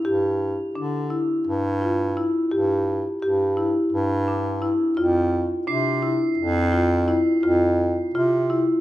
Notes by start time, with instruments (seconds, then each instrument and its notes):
0.05 bass clarinet G2, marimba G4
0.75 bass clarinet D3, marimba D4
1.10 marimba E4
1.47 bass clarinet G2
1.81 marimba F4
2.17 marimba E4
2.51 bass clarinet G2, marimba G4
3.22 bass clarinet G2, marimba G4
3.57 marimba E4
3.92 bass clarinet G2
4.28 marimba D4
4.62 marimba E4
4.97 bass clarinet F2, marimba F4
5.67 bass clarinet C3, marimba D4, crotales C7
6.02 marimba E4
6.38 bass clarinet F2
6.72 marimba F4
7.08 marimba E4
7.43 bass clarinet F2, marimba F4
8.14 bass clarinet C3, marimba F4
8.50 marimba E4